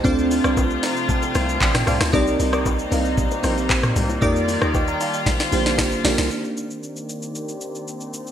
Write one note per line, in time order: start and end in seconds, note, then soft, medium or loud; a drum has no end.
0.00 4.18 C3 medium
0.00 4.18 C4 medium
0.00 0.88 C4 loud
0.00 0.17 D#5 medium
0.00 0.17 G5 medium
0.04 0.40 D2 loud
0.04 2.11 F3 medium
0.04 2.11 A3 medium
0.04 0.88 D4 loud
0.04 0.41 F4 loud
0.04 2.11 F4 medium
0.04 0.89 F4 loud
0.04 0.89 A4 medium
0.04 0.41 C5 medium
0.04 0.41 D5 loud
0.04 0.89 D5 loud
0.04 kick loud
0.04 low conga medium
0.04 shaker medium
0.19 shaker medium
0.31 open hi-hat soft
0.31 low bongo medium
0.31 shaker medium
0.44 0.79 C2 medium
0.44 0.57 F4 medium
0.44 0.57 C5 medium
0.44 0.57 D5 medium
0.44 cross-stick loud
0.44 shaker medium
0.57 kick loud
0.57 high bongo medium
0.57 shaker medium
0.70 shaker medium
0.83 1.07 A#5 medium
0.83 snare medium
0.83 open hi-hat medium
0.83 high bongo medium
0.83 shaker medium
0.96 shaker medium
1.09 1.34 A5 medium
1.09 kick loud
1.09 low conga medium
1.09 shaker medium
1.22 high bongo soft
1.22 shaker medium
1.35 1.59 C2 loud
1.35 1.60 G5 medium
1.35 cross-stick medium
1.35 open hi-hat medium
1.35 low bongo medium
1.35 shaker medium
1.49 shaker medium
1.61 1.84 A1 medium
1.61 1.75 D5 medium
1.61 1.74 F5 medium
1.61 kick loud
1.61 clap loud
1.61 high bongo medium
1.61 shaker medium
1.74 1.87 G5 medium
1.74 cross-stick loud
1.74 snare medium
1.74 mid tom medium
1.74 shaker medium
1.87 2.00 C2 medium
1.87 2.11 F4 medium
1.87 2.11 C5 medium
1.87 2.12 D5 medium
1.87 2.01 F5 medium
1.87 2.00 A5 medium
1.87 cross-stick medium
1.87 open hi-hat medium
1.87 low conga medium
1.87 shaker medium
2.01 2.12 D2 medium
2.01 2.26 A5 medium
2.01 2.26 C6 medium
2.01 cross-stick loud
2.01 snare medium
2.01 low bongo medium
2.01 shaker soft
2.12 2.37 C2 loud
2.12 6.27 G3 medium
2.12 6.27 A#3 medium
2.12 2.76 C4 loud
2.12 2.50 D#4 loud
2.12 2.76 D#4 loud
2.12 4.20 D#4 medium
2.12 2.77 G4 loud
2.12 2.50 A#4 medium
2.12 2.77 A#4 loud
2.12 2.50 D5 loud
2.12 2.77 D5 loud
2.12 kick loud
2.12 low conga medium
2.12 shaker medium
2.27 shaker medium
2.40 2.86 C2 loud
2.40 open hi-hat medium
2.40 low bongo medium
2.40 shaker medium
2.53 2.65 D#4 medium
2.53 2.65 A#4 medium
2.53 2.65 D5 medium
2.53 cross-stick loud
2.53 shaker medium
2.66 kick loud
2.66 high bongo medium
2.66 shaker medium
2.79 shaker medium
2.91 3.27 C2 loud
2.91 3.33 C4 medium
2.91 3.34 D#4 medium
2.91 3.34 G4 medium
2.91 3.34 A#4 medium
2.91 3.35 F5 medium
2.91 open hi-hat medium
2.91 high bongo medium
2.91 shaker medium
3.05 shaker medium
3.18 kick loud
3.18 low conga medium
3.18 shaker medium
3.31 high bongo medium
3.31 shaker medium
3.43 3.91 A#1 medium
3.43 4.06 C4 medium
3.43 4.07 D#4 medium
3.43 4.07 G4 medium
3.43 4.07 A#4 medium
3.43 4.08 C5 loud
3.43 cross-stick medium
3.43 open hi-hat medium
3.43 low bongo medium
3.43 shaker medium
3.58 shaker medium
3.69 kick loud
3.69 clap loud
3.69 high bongo medium
3.69 shaker medium
3.83 cross-stick medium
3.83 mid tom medium
3.83 shaker medium
3.96 4.19 C2 medium
3.96 open hi-hat medium
3.96 low conga medium
3.96 shaker medium
4.09 low bongo medium
4.09 shaker soft
4.21 4.58 F2 loud
4.21 5.25 D#3 medium
4.21 5.05 A#3 loud
4.21 5.06 D#4 loud
4.21 4.58 D#4 loud
4.21 6.29 F4 medium
4.21 5.06 F4 loud
4.21 4.58 G4 medium
4.21 5.06 G4 medium
4.21 4.59 A#4 medium
4.21 5.25 D5 medium
4.21 4.59 D5 loud
4.21 4.75 D5 loud
4.21 kick loud
4.21 low conga medium
4.21 shaker medium
4.36 shaker medium
4.48 open hi-hat soft
4.48 low bongo medium
4.48 shaker medium
4.61 4.96 D#2 medium
4.61 4.74 D#4 medium
4.61 4.74 G4 medium
4.61 4.74 A#4 medium
4.61 4.74 D5 medium
4.61 cross-stick loud
4.61 shaker medium
4.74 4.88 D#5 medium
4.74 4.87 G5 medium
4.74 kick loud
4.74 high bongo medium
4.74 shaker medium
4.88 5.00 G5 medium
4.88 5.00 A#5 medium
4.88 shaker medium
5.01 5.14 F5 medium
5.01 5.13 A5 medium
5.01 open hi-hat medium
5.01 high bongo medium
5.01 shaker medium
5.14 5.39 D#5 medium
5.14 5.39 G5 medium
5.14 shaker medium
5.26 6.30 D3 medium
5.26 6.30 C4 medium
5.26 kick loud
5.26 snare medium
5.26 low conga medium
5.26 shaker medium
5.40 snare medium
5.40 high bongo soft
5.40 shaker medium
5.52 5.80 A#1 loud
5.52 5.94 A#3 medium
5.52 5.95 D4 medium
5.52 5.95 F4 medium
5.52 5.95 G4 medium
5.52 5.96 C5 medium
5.52 open hi-hat medium
5.52 low bongo medium
5.52 shaker medium
5.66 snare medium
5.66 shaker medium
5.78 6.02 G1 medium
5.78 kick loud
5.78 snare medium
5.78 high bongo medium
5.78 shaker medium
5.92 shaker medium
6.04 6.17 A#1 medium
6.04 6.25 A#3 medium
6.04 6.26 D4 medium
6.04 6.26 F4 medium
6.04 6.29 G4 medium
6.04 6.26 G4 medium
6.04 6.27 A#4 loud
6.04 6.29 C5 medium
6.04 6.29 D5 medium
6.04 snare loud
6.04 open hi-hat medium
6.04 low conga medium
6.04 shaker medium
6.18 6.29 C2 medium
6.18 snare medium
6.18 low bongo medium
6.18 shaker soft
6.28 8.32 D#3 medium
6.28 8.32 A#3 medium
6.28 8.32 C4 medium
6.28 8.32 D4 medium
6.28 8.32 D#4 medium
6.28 8.32 G4 medium
6.28 8.32 D5 medium
6.28 shaker medium
6.33 8.32 G4 medium
6.33 8.32 C5 medium
6.45 shaker soft
6.57 shaker medium
6.71 shaker medium
6.83 shaker medium
6.96 shaker soft
7.09 shaker medium
7.22 shaker medium
7.35 shaker medium
7.48 shaker medium
7.61 shaker medium
7.75 shaker soft
7.88 shaker medium
8.01 shaker soft
8.13 shaker medium
8.27 shaker soft